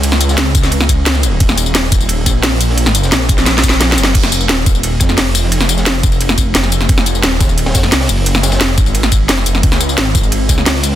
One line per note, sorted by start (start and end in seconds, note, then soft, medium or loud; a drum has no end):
0.00 0.88 C#2 medium
0.00 closed hi-hat medium
0.00 ride medium
0.04 ride medium
0.12 snare soft
0.12 snare medium
0.21 closed hi-hat medium
0.21 ride medium
0.21 tambourine medium
0.29 snare soft
0.29 tambourine soft
0.37 snare loud
0.37 closed hi-hat medium
0.37 ride medium
0.55 kick loud
0.55 closed hi-hat medium
0.55 ride medium
0.55 tambourine medium
0.63 snare soft
0.63 ride soft
0.63 tambourine soft
0.71 closed hi-hat medium
0.71 ride medium
0.80 snare medium
0.80 ride soft
0.89 1.39 C#2 loud
0.89 kick medium
0.89 closed hi-hat medium
0.89 ride medium
0.89 tambourine medium
1.06 snare loud
1.06 closed hi-hat medium
1.06 ride medium
1.15 snare medium
1.15 snare soft
1.15 ride medium
1.23 closed hi-hat loud
1.23 ride medium
1.23 tambourine medium
1.40 2.25 D#1 loud
1.40 kick loud
1.40 closed hi-hat medium
1.40 ride medium
1.49 snare medium
1.58 closed hi-hat medium
1.58 ride medium
1.58 tambourine medium
1.66 tambourine soft
1.75 snare loud
1.75 closed hi-hat medium
1.75 ride medium
1.92 kick loud
1.92 closed hi-hat loud
1.92 ride medium
1.92 tambourine medium
2.01 tambourine soft
2.09 closed hi-hat medium
2.09 ride medium
2.26 3.11 A#1 loud
2.26 kick medium
2.26 snare soft
2.26 closed hi-hat loud
2.26 ride medium
2.26 tambourine medium
2.43 snare loud
2.43 closed hi-hat medium
2.43 open hi-hat medium
2.43 ride medium
2.61 closed hi-hat loud
2.61 ride medium
2.61 tambourine medium
2.69 snare soft
2.77 closed hi-hat medium
2.77 ride medium
2.86 snare soft
2.86 snare medium
2.95 closed hi-hat loud
2.95 ride medium
2.95 tambourine medium
3.03 snare soft
3.03 tambourine soft
3.12 3.96 A#1 loud
3.12 snare loud
3.12 closed hi-hat medium
3.12 ride medium
3.29 kick loud
3.29 closed hi-hat loud
3.29 ride medium
3.29 tambourine medium
3.38 snare soft
3.38 ride soft
3.38 tambourine soft
3.46 snare medium
3.46 closed hi-hat medium
3.46 ride medium
3.55 snare medium
3.55 ride soft
3.63 kick medium
3.63 closed hi-hat loud
3.63 ride medium
3.63 tambourine medium
3.69 snare medium
3.69 tambourine soft
3.80 snare loud
3.80 snare medium
3.80 closed hi-hat medium
3.80 ride medium
3.89 snare loud
3.89 ride medium
3.92 snare loud
3.98 4.14 F#1 loud
3.98 snare loud
3.98 closed hi-hat loud
3.98 ride medium
3.98 tambourine medium
4.04 snare loud
4.06 snare medium
4.06 ride medium
4.14 4.48 F1 loud
4.14 kick loud
4.14 closed hi-hat loud
4.14 ride medium
4.14 crash loud
4.24 snare medium
4.32 closed hi-hat medium
4.32 ride medium
4.32 tambourine medium
4.41 tambourine soft
4.49 snare loud
4.49 closed hi-hat loud
4.49 ride medium
4.66 kick loud
4.66 closed hi-hat medium
4.66 ride medium
4.66 tambourine medium
4.75 tambourine soft
4.83 closed hi-hat loud
4.83 ride medium
5.00 5.16 F2 loud
5.00 kick medium
5.00 snare soft
5.00 closed hi-hat medium
5.00 ride medium
5.00 tambourine medium
5.09 snare soft
5.17 6.54 F1 loud
5.17 snare loud
5.17 closed hi-hat loud
5.17 open hi-hat medium
5.17 ride medium
5.35 closed hi-hat medium
5.35 ride medium
5.35 tambourine medium
5.44 snare soft
5.52 closed hi-hat medium
5.52 ride medium
5.61 snare soft
5.61 snare medium
5.69 closed hi-hat medium
5.69 ride medium
5.69 tambourine medium
5.77 snare soft
5.77 tambourine soft
5.86 snare loud
5.86 closed hi-hat loud
5.86 ride medium
6.03 kick loud
6.03 closed hi-hat medium
6.03 ride medium
6.03 tambourine medium
6.12 ride soft
6.12 tambourine soft
6.21 closed hi-hat loud
6.21 ride medium
6.29 snare medium
6.29 ride soft
6.38 kick medium
6.38 closed hi-hat medium
6.38 ride medium
6.38 tambourine medium
6.55 6.88 F1 loud
6.55 snare loud
6.55 closed hi-hat loud
6.55 ride medium
6.63 snare loud
6.63 snare soft
6.63 ride medium
6.72 closed hi-hat medium
6.72 ride medium
6.72 tambourine medium
6.81 snare soft
6.89 7.22 F1 loud
6.89 kick loud
6.89 closed hi-hat medium
6.89 ride medium
6.98 snare medium
7.06 closed hi-hat medium
7.06 ride medium
7.06 tambourine medium
7.15 tambourine soft
7.23 7.74 D#1 loud
7.23 snare loud
7.23 closed hi-hat medium
7.23 ride medium
7.40 kick loud
7.40 snare loud
7.40 closed hi-hat medium
7.40 ride medium
7.40 tambourine medium
7.49 tambourine soft
7.58 closed hi-hat medium
7.58 ride medium
7.66 snare loud
7.66 ride medium
7.74 7.91 F2 loud
7.74 kick medium
7.74 snare loud
7.74 closed hi-hat medium
7.74 open hi-hat medium
7.74 tambourine medium
7.83 snare soft
7.92 8.08 C2 loud
7.92 snare loud
7.92 closed hi-hat medium
7.92 ride medium
8.00 snare loud
8.00 open hi-hat medium
8.09 8.59 F#1 loud
8.09 closed hi-hat medium
8.09 tambourine medium
8.17 ride medium
8.26 closed hi-hat medium
8.26 ride medium
8.35 snare soft
8.35 snare medium
8.43 snare loud
8.43 closed hi-hat medium
8.43 ride medium
8.43 tambourine medium
8.52 snare loud
8.52 ride medium
8.52 tambourine soft
8.60 snare loud
8.60 closed hi-hat medium
8.60 ride medium
8.77 9.28 G#1 loud
8.77 kick loud
8.77 closed hi-hat medium
8.77 ride medium
8.77 tambourine medium
8.86 ride soft
8.86 tambourine soft
8.94 closed hi-hat medium
8.94 ride medium
9.03 snare medium
9.03 ride soft
9.12 kick medium
9.12 closed hi-hat medium
9.12 ride medium
9.12 tambourine medium
9.28 9.45 F1 loud
9.28 snare loud
9.28 closed hi-hat medium
9.28 ride loud
9.28 ride medium
9.38 snare soft
9.46 9.62 F1 loud
9.46 closed hi-hat medium
9.46 ride medium
9.46 tambourine medium
9.55 snare soft
9.63 9.96 C#2 loud
9.63 kick loud
9.63 closed hi-hat medium
9.63 ride medium
9.72 snare medium
9.80 closed hi-hat medium
9.80 ride medium
9.80 tambourine medium
9.89 tambourine soft
9.98 10.48 G#1 loud
9.98 snare loud
9.98 closed hi-hat medium
9.98 ride medium
10.15 kick loud
10.15 closed hi-hat medium
10.15 ride medium
10.15 tambourine medium
10.23 tambourine soft
10.32 closed hi-hat medium
10.32 ride medium
10.49 10.65 C#2 loud
10.49 kick medium
10.49 snare soft
10.49 closed hi-hat medium
10.49 ride medium
10.49 tambourine medium
10.58 snare soft
10.66 10.95 C#2 loud
10.66 snare loud
10.66 closed hi-hat medium
10.66 open hi-hat medium
10.66 ride medium
10.83 closed hi-hat medium
10.83 ride medium
10.83 tambourine medium
10.92 snare soft